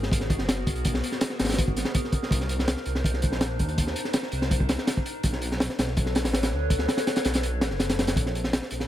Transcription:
Already playing: G#1 B3 F#4 G#4 A#4
0.03 snare
0.12 kick, closed hi-hat
0.20 snare
0.30 kick, closed hi-hat
0.38 F#1, snare
0.49 snare, closed hi-hat
0.67 B1, kick, closed hi-hat
0.75 closed hi-hat
0.85 kick, closed hi-hat
0.94 snare
1.04 closed hi-hat
1.12 snare
1.21 snare, closed hi-hat
1.30 snare
1.39 G#1, snare, closed hi-hat
1.44 snare, closed hi-hat
1.49 snare, closed hi-hat
1.52 snare, closed hi-hat
1.58 kick, closed hi-hat
1.68 kick
1.77 snare, closed hi-hat
1.85 snare
1.94 kick, closed hi-hat
2.04 snare
2.12 kick, closed hi-hat
2.23 snare
2.31 C2 D4 D#4 C5, kick, closed hi-hat
2.40 snare
2.49 closed hi-hat
2.59 snare
2.68 snare, closed hi-hat
2.77 snare
2.85 C2, closed hi-hat
2.95 snare
3.04 kick, closed hi-hat
3.13 snare
3.22 kick, closed hi-hat
3.32 A#1, snare
3.41 snare, closed hi-hat
3.59 D#2, kick, closed hi-hat
3.68 closed hi-hat
3.78 kick, closed hi-hat
3.87 snare
3.96 closed hi-hat
4.05 snare
4.13 snare, closed hi-hat
4.23 snare
4.32 C2, closed hi-hat
4.42 snare
4.51 kick, closed hi-hat
4.60 kick
4.69 snare, closed hi-hat
4.78 snare
4.87 snare, closed hi-hat
4.97 kick
5.06 closed hi-hat
5.23 B1 D4 A4 B4 C#5, kick, closed hi-hat
5.33 snare
5.42 closed hi-hat
5.52 snare
5.60 snare, closed hi-hat
5.69 snare
5.78 B1, snare, closed hi-hat
5.87 snare
5.97 kick, closed hi-hat
6.06 snare
6.15 snare, closed hi-hat
6.24 A1, snare, closed hi-hat
6.33 snare, closed hi-hat
6.43 snare, closed hi-hat
6.52 D2
6.70 kick, closed hi-hat
6.79 snare
6.88 snare, closed hi-hat
6.97 snare, closed hi-hat
7.07 snare, closed hi-hat
7.16 snare, closed hi-hat
7.25 B1, snare, closed hi-hat
7.34 snare, closed hi-hat
7.43 closed hi-hat
7.61 A1, snare, closed hi-hat
7.70 F#1, snare
7.80 snare, closed hi-hat
7.89 snare, closed hi-hat
7.99 snare, closed hi-hat
8.07 snare, closed hi-hat
8.16 A#1 C#4 G#4 A#4 C5, kick, closed hi-hat
8.26 snare
8.35 closed hi-hat
8.44 snare
8.53 snare, closed hi-hat
8.62 snare
8.71 A#1, closed hi-hat
8.80 snare

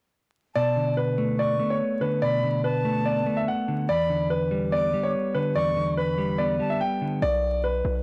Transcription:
0.55 B2 D5 A5
0.76 D3
0.97 B4
1.18 A3
1.38 B3 D5 C#6
1.59 A3
1.70 C#5
2.01 D3 B4
2.22 B2 D5 B5
2.43 D3
2.64 B4 A5
2.85 A3
3.05 B3 D5
3.26 A3
3.37 E5
3.48 F#5
3.68 D3
3.89 E2 D5 B5
4.10 D3
4.30 B4
4.51 G3
4.72 B3 D5 D6
4.93 G3
5.03 C#5
5.34 D3 B4
5.55 E2 D5 C#6
5.76 D3
5.97 B4 B5
6.18 G3
6.38 B3 D5
6.59 G3 A5
6.70 E5
6.81 G5
7.01 D3
7.22 B1 D5
7.64 B4
7.85 B1

